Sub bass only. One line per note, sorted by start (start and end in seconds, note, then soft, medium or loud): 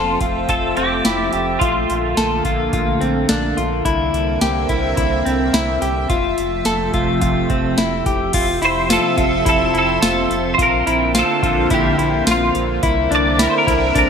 0.00 0.18 F1 medium
0.21 0.46 F1 medium
0.49 0.74 F1 loud
0.77 1.02 F1 medium
1.05 1.30 F1 medium
1.33 1.58 F1 loud
1.62 1.86 A#1 loud
1.90 2.15 A#1 loud
2.17 2.42 A#1 medium
2.45 2.70 A#1 medium
2.73 2.98 A#1 loud
3.01 3.26 A#1 medium
3.30 3.54 A#1 loud
3.58 3.82 A#1 loud
3.86 4.10 C2 loud
4.13 4.38 C2 loud
4.42 4.66 C2 medium
4.70 4.94 C2 medium
4.98 5.22 C2 medium
5.26 5.51 C2 medium
5.53 5.78 C2 medium
5.82 6.06 C2 medium
6.10 6.35 F1 loud
6.38 6.63 F1 medium
6.66 6.91 F1 medium
6.94 7.19 F1 loud
7.22 7.47 F1 loud
7.50 7.75 F1 medium
7.78 8.02 F1 medium
8.06 8.31 F1 loud
8.34 8.59 F1 loud
8.62 8.99 F1 loud
9.18 9.43 F1 loud
9.47 9.71 F1 loud
9.74 9.99 F1 medium
10.03 10.27 F1 loud
10.30 10.55 F1 medium
10.59 10.83 A#1 loud
10.87 11.24 A#1 loud
11.43 11.68 A#1 loud
11.71 11.96 A#1 loud
11.99 12.23 A#1 medium
12.27 12.52 A#1 loud
12.55 12.80 A#1 medium
12.83 13.08 C2 loud
13.11 13.48 C2 loud
13.68 13.92 C2 medium
13.96 14.10 C2 loud